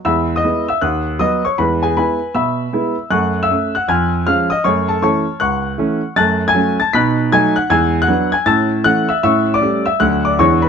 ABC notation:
X:1
M:4/4
L:1/16
Q:"Swing" 1/4=157
K:E
V:1 name="Grand piano"
[ebe']3 [dd']3 [ee']2 [fd'f']4 [dd']2 [cc']2 | [Bb]2 [Gg]2 [Bgb]4 [ebe']8 | [fc'f']3 [ee']3 [ff']2 [g^e'g']4 [^ee']2 [dd']2 | [cc']2 [Aa]2 [cac']4 [fc'f']8 |
[K:A] [af'a']3 [gg']3 [aa']2 [bf'b']4 [gg']2 [ff']2 | [ge'g']3 [ff']3 [gg']2 [ae'a']4 [ff']2 [ee']2 | [ec'e']3 [dd']3 [ee']2 [ff']2 [dd']2 [cc']2 [Bb]2 |]
V:2 name="Grand piano" clef=bass
[E,,G,]4 [G,B,E]4 D,,4 [F,B,]4 | [E,,G,]4 [G,B,E]4 B,,4 [G,B,E]4 | [F,,A,]4 [A,C]4 ^E,,4 [^E,G,C]4 | [F,,A,]4 [E,A,C]4 C,,4 [E,A,C]4 |
[K:A] [F,,A,]4 [F,A,C]4 [B,,^D]4 [F,A,D]4 | [E,,G,]4 [F,B,D]4 [A,,C]4 [E,A,C]4 | [A,,C]4 [=G,A,C]4 [D,,F,A,D]4 [E,,E,^G,D]4 |]